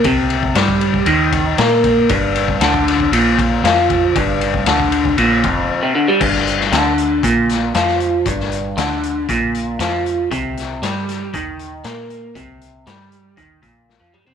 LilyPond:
<<
  \new Staff \with { instrumentName = "Clean electric guitar" } { \clef bass \time 4/4 \key c \major \tempo 4 = 117 c4 g4 ees4 bes4 | g,4 d4 bes,4 f4 | g,4 d4 bes,8 f,8. c16 d16 g16 | g,4 d4 bes,4 f4 |
g,4 d4 bes,4 f4 | c4 g4 ees4 bes4 | c4 g4 ees8 bes,8. f16 g16 c'16 | }
  \new Staff \with { instrumentName = "Fingered electric bass" } { \clef bass \time 4/4 \key c \major c,4 g,4 ees,4 bes,4 | g,,4 d,4 bes,,4 f,4 | g,,4 d,4 bes,,8 f,,8 r4 | g,,4 d,4 bes,,4 f,4 |
g,,4 d,4 bes,,4 f,4 | c,4 g,4 ees,4 bes,4 | c,4 g,4 ees,8 bes,,8. f,16 r16 c16 | }
  \new DrumStaff \with { instrumentName = "Drums" } \drummode { \time 4/4 <bd cymr>8 cymr16 bd16 <cymr sn>16 bd16 cymr16 bd16 cymr8 <bd cymr>8 <cymr sn>8 <bd cymr>8 | <bd cymr>8 cymr16 bd16 <cymr sn>16 bd16 <cymr sn>16 bd16 cymr8 <bd cymr>8 <cymr sn>8 <bd cymr>8 | <bd cymr>8 cymr16 bd16 <cymr sn>16 bd16 cymr16 bd16 cymr8 <bd cymr>8 r4 | <cymc bd>16 sn16 hh16 sn16 <hh sn>8 hh8 <hh bd>8 <hh sn>8 <hh sn>16 sn16 hh8 |
<hh bd>16 sn16 hh8 <hh sn>8 hh8 <hh bd>8 hh8 <hh sn>8 hh8 | <hh bd>8 <hh sn>8 <hh sn>8 <hh sn>8 <hh bd>8 hh8 <hh sn>8 hh8 | <hh bd>8 hh8 <hh sn>8 hh8 <hh bd>8 <hh bd>8 sn8 toml16 tomfh16 | }
>>